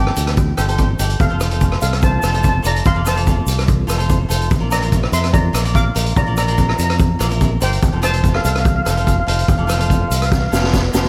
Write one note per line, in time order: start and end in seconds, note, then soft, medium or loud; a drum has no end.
0.00 0.29 G4 medium
0.00 0.29 A4 medium
0.00 0.29 D5 medium
0.00 0.08 G5 medium
0.07 cross-stick medium
0.16 0.53 D2 medium
0.16 closed hi-hat medium
0.16 shaker loud
0.27 cross-stick medium
0.27 closed hi-hat medium
0.37 kick loud
0.37 closed hi-hat medium
0.37 shaker medium
0.57 0.94 G1 medium
0.57 0.64 G4 medium
0.57 0.65 A4 medium
0.57 0.65 C5 medium
0.57 cross-stick medium
0.57 closed hi-hat medium
0.57 shaker medium
0.68 0.87 G4 medium
0.68 0.87 A4 medium
0.68 0.88 C5 medium
0.68 closed hi-hat medium
0.68 shaker soft
0.78 kick medium
0.78 closed hi-hat medium
0.78 shaker medium
0.99 1.17 G1 medium
0.99 1.18 G4 medium
0.99 1.18 A4 medium
0.99 1.19 D5 medium
0.99 closed hi-hat medium
0.99 shaker medium
1.09 closed hi-hat medium
1.09 shaker soft
1.20 1.29 F1 loud
1.20 1.79 A4 medium
1.20 1.81 F5 medium
1.20 kick loud
1.20 closed hi-hat medium
1.20 shaker medium
1.30 1.75 F1 medium
1.30 1.36 F4 medium
1.30 1.37 A4 medium
1.30 1.37 C5 medium
1.40 1.47 F4 medium
1.40 1.47 A4 medium
1.40 1.47 C5 medium
1.40 cross-stick medium
1.40 closed hi-hat medium
1.40 shaker medium
1.50 1.94 F4 medium
1.50 1.94 A4 medium
1.50 1.95 C5 medium
1.50 closed hi-hat medium
1.50 shaker soft
1.61 kick medium
1.61 closed hi-hat medium
1.61 shaker medium
1.72 cross-stick medium
1.81 2.18 C2 medium
1.81 2.02 A4 medium
1.81 2.03 F5 medium
1.81 closed hi-hat medium
1.81 shaker medium
1.93 cross-stick medium
1.93 closed hi-hat medium
2.02 2.10 C5 medium
2.02 2.10 A5 loud
2.02 kick loud
2.02 closed hi-hat medium
2.02 shaker medium
2.12 2.18 A5 medium
2.19 2.59 F1 medium
2.19 2.29 F4 medium
2.19 2.29 A4 medium
2.19 2.25 A5 medium
2.19 shaker medium
2.23 2.30 C5 medium
2.23 2.33 A5 medium
2.23 cross-stick medium
2.23 closed hi-hat medium
2.32 2.52 F4 medium
2.32 2.52 A4 medium
2.32 2.52 C5 medium
2.32 2.39 A5 medium
2.32 closed hi-hat medium
2.32 shaker soft
2.40 2.47 A5 medium
2.40 kick medium
2.40 closed hi-hat medium
2.40 shaker medium
2.49 2.55 A5 medium
2.62 2.82 F1 medium
2.62 2.82 F4 medium
2.62 2.83 A4 medium
2.62 2.83 D5 medium
2.62 closed hi-hat medium
2.62 shaker medium
2.67 2.85 D5 medium
2.67 2.87 A#5 medium
2.75 closed hi-hat medium
2.75 shaker soft
2.85 2.95 F1 loud
2.85 3.05 F5 medium
2.85 3.07 C6 loud
2.85 kick loud
2.85 closed hi-hat medium
2.85 shaker medium
2.95 3.40 F1 medium
2.95 3.01 F4 medium
2.95 3.01 A4 medium
2.95 3.02 D5 medium
3.04 3.12 F4 medium
3.04 3.12 A4 medium
3.04 3.12 C5 medium
3.04 4.27 C5 medium
3.04 4.27 A5 medium
3.04 cross-stick medium
3.04 closed hi-hat medium
3.04 shaker loud
3.15 3.59 F4 medium
3.15 3.60 A4 medium
3.15 3.60 D5 medium
3.15 closed hi-hat medium
3.15 shaker soft
3.27 kick medium
3.27 closed hi-hat medium
3.27 shaker medium
3.46 3.83 C2 medium
3.46 closed hi-hat medium
3.46 shaker loud
3.59 cross-stick medium
3.59 closed hi-hat medium
3.68 kick loud
3.68 closed hi-hat medium
3.68 shaker medium
3.87 4.24 F1 medium
3.87 3.94 F4 medium
3.87 3.95 A4 medium
3.87 3.95 C5 medium
3.87 cross-stick medium
3.87 closed hi-hat medium
3.87 shaker loud
3.97 4.17 F4 medium
3.97 4.17 A4 medium
3.97 4.18 C5 medium
3.97 closed hi-hat medium
3.97 shaker soft
4.10 kick medium
4.10 closed hi-hat medium
4.10 shaker medium
4.29 4.48 F1 medium
4.29 4.48 F4 medium
4.29 4.48 A4 medium
4.29 4.49 C5 loud
4.29 closed hi-hat medium
4.29 shaker medium
4.41 closed hi-hat medium
4.41 shaker soft
4.51 4.60 A#1 loud
4.51 kick loud
4.51 closed hi-hat medium
4.51 shaker medium
4.60 5.05 A#1 medium
4.60 4.67 F4 medium
4.60 4.67 A#4 medium
4.60 4.67 D5 medium
4.70 4.77 F4 medium
4.70 4.78 A#4 medium
4.70 4.78 D5 medium
4.70 5.11 D5 medium
4.70 5.15 A#5 medium
4.70 cross-stick medium
4.70 closed hi-hat medium
4.70 shaker medium
4.81 5.25 F4 medium
4.81 5.25 A#4 medium
4.81 5.26 E5 medium
4.81 closed hi-hat medium
4.81 shaker soft
4.92 kick medium
4.92 closed hi-hat medium
4.92 shaker medium
5.03 cross-stick medium
5.12 5.48 F2 medium
5.12 5.33 E5 medium
5.12 5.35 C6 medium
5.12 closed hi-hat medium
5.12 shaker loud
5.24 cross-stick medium
5.24 closed hi-hat medium
5.33 5.72 D5 medium
5.33 5.72 A#5 medium
5.33 kick loud
5.33 closed hi-hat medium
5.33 shaker medium
5.53 5.90 A#1 medium
5.53 5.60 F4 medium
5.53 5.60 A#4 medium
5.53 5.61 D5 medium
5.53 cross-stick medium
5.53 closed hi-hat medium
5.53 shaker medium
5.64 5.83 F4 medium
5.64 5.83 A#4 medium
5.64 5.84 D5 medium
5.64 closed hi-hat medium
5.64 shaker soft
5.75 6.14 F5 medium
5.75 6.18 D6 loud
5.75 kick medium
5.75 closed hi-hat medium
5.75 shaker medium
5.95 6.14 A#1 medium
5.95 6.14 F4 medium
5.95 6.14 A#4 medium
5.95 6.15 D5 medium
5.95 closed hi-hat medium
5.95 shaker medium
6.06 closed hi-hat medium
6.16 6.26 A#1 loud
6.16 6.37 D5 medium
6.16 6.37 A#5 medium
6.16 kick loud
6.16 closed hi-hat medium
6.16 shaker medium
6.26 6.72 A#1 medium
6.26 6.33 F4 medium
6.26 6.33 A#4 medium
6.26 6.33 D5 medium
6.37 6.43 F4 medium
6.37 6.44 A#4 medium
6.37 6.44 D5 medium
6.37 6.45 D5 medium
6.37 6.44 A#5 medium
6.37 cross-stick medium
6.37 closed hi-hat medium
6.37 shaker medium
6.47 6.91 F4 medium
6.47 6.91 A#4 medium
6.47 6.92 D5 medium
6.47 closed hi-hat medium
6.47 shaker soft
6.53 6.59 A#5 medium
6.58 6.67 A#5 medium
6.58 kick medium
6.58 closed hi-hat medium
6.58 shaker medium
6.69 6.75 A#5 medium
6.69 cross-stick medium
6.76 7.14 F2 medium
6.76 6.82 A#5 medium
6.76 closed hi-hat medium
6.76 shaker medium
6.84 6.90 A#5 medium
6.90 cross-stick medium
6.90 closed hi-hat medium
6.99 kick loud
6.99 closed hi-hat medium
6.99 shaker medium
7.19 7.56 A#1 medium
7.19 7.26 F4 medium
7.19 7.26 A#4 medium
7.19 7.27 D5 loud
7.19 cross-stick medium
7.19 closed hi-hat medium
7.19 shaker medium
7.29 7.49 F4 medium
7.29 7.49 A#4 medium
7.29 7.49 E5 loud
7.29 closed hi-hat medium
7.29 shaker soft
7.41 kick medium
7.41 closed hi-hat medium
7.41 shaker medium
7.60 7.80 G1 medium
7.60 7.80 F4 medium
7.60 7.80 A#4 medium
7.60 8.00 C5 medium
7.60 7.80 D5 medium
7.60 8.01 G5 medium
7.60 closed hi-hat medium
7.60 shaker medium
7.72 closed hi-hat medium
7.72 shaker soft
7.82 7.92 F1 loud
7.82 kick loud
7.82 closed hi-hat medium
7.82 shaker medium
7.93 8.37 F1 medium
7.93 7.99 F4 medium
7.93 7.99 A4 medium
7.93 7.99 C5 medium
8.02 8.09 F4 medium
8.02 8.09 A4 medium
8.02 8.09 C5 medium
8.02 8.33 C5 medium
8.02 8.36 A5 loud
8.02 cross-stick medium
8.02 closed hi-hat medium
8.02 shaker medium
8.13 8.57 F4 medium
8.13 8.57 A4 medium
8.13 8.57 C5 medium
8.13 closed hi-hat medium
8.13 shaker soft
8.23 kick medium
8.23 closed hi-hat medium
8.23 shaker medium
8.34 8.40 A4 medium
8.34 8.40 F5 medium
8.34 cross-stick medium
8.44 8.80 C2 loud
8.44 8.52 A4 medium
8.44 8.51 F5 medium
8.44 closed hi-hat medium
8.44 shaker medium
8.52 8.59 F5 medium
8.52 cross-stick medium
8.52 closed hi-hat medium
8.60 8.67 F5 medium
8.65 8.75 F5 medium
8.65 kick loud
8.65 closed hi-hat medium
8.65 shaker medium
8.76 8.81 F5 medium
8.83 9.22 F1 loud
8.83 8.92 F4 medium
8.83 8.92 A4 medium
8.83 8.89 F5 medium
8.83 cross-stick medium
8.83 closed hi-hat medium
8.87 8.93 C5 medium
8.87 8.96 F5 medium
8.87 shaker medium
8.96 9.15 F4 medium
8.96 9.15 A4 medium
8.96 9.16 C5 medium
8.96 9.03 F5 medium
8.96 closed hi-hat medium
8.96 shaker soft
9.05 9.10 F5 medium
9.05 kick medium
9.05 closed hi-hat medium
9.05 shaker medium
9.11 9.19 F5 medium
9.20 9.26 F5 medium
9.27 9.45 F1 loud
9.27 9.46 F4 medium
9.27 9.46 A4 medium
9.27 9.47 C5 medium
9.27 9.34 F5 medium
9.27 closed hi-hat loud
9.35 9.41 F5 medium
9.35 closed hi-hat medium
9.35 shaker soft
9.42 9.49 F5 medium
9.48 9.57 F1 loud
9.48 9.56 F5 medium
9.48 kick loud
9.48 closed hi-hat medium
9.48 shaker medium
9.57 10.03 F1 medium
9.57 9.64 F4 medium
9.57 9.65 A4 medium
9.57 9.65 D5 medium
9.57 9.64 F5 soft
9.65 9.74 F4 medium
9.65 9.75 A4 medium
9.65 9.75 C5 medium
9.65 9.70 F5 medium
9.69 9.78 F5 medium
9.69 cross-stick medium
9.69 closed hi-hat medium
9.69 shaker medium
9.77 10.22 F4 medium
9.77 10.22 A4 medium
9.77 10.23 C5 medium
9.77 9.84 F5 medium
9.77 closed hi-hat medium
9.77 shaker soft
9.85 9.93 F5 medium
9.90 10.00 F5 medium
9.90 kick medium
9.90 closed hi-hat medium
9.90 shaker medium
10.02 10.07 F5 medium
10.08 10.46 C2 medium
10.08 10.15 F5 medium
10.08 closed hi-hat medium
10.08 shaker loud
10.17 10.23 F5 medium
10.22 10.30 F5 medium
10.22 cross-stick medium
10.22 closed hi-hat medium
10.22 shaker soft
10.32 kick loud
10.32 snare medium
10.32 shaker medium
10.39 10.45 F5 medium
10.46 10.52 F5 medium
10.51 10.88 F1 medium
10.51 10.58 F4 medium
10.51 10.58 A4 medium
10.51 10.59 C5 medium
10.51 10.61 F5 medium
10.51 snare medium
10.51 shaker loud
10.61 10.81 F4 medium
10.61 10.81 A4 medium
10.61 10.81 C5 medium
10.61 snare medium
10.74 kick medium
10.74 snare medium
10.74 shaker medium
10.93 11.09 F1 medium
10.93 11.09 F4 medium
10.93 11.09 A4 medium
10.93 11.09 C5 medium
10.93 snare loud
10.93 shaker loud
11.05 snare medium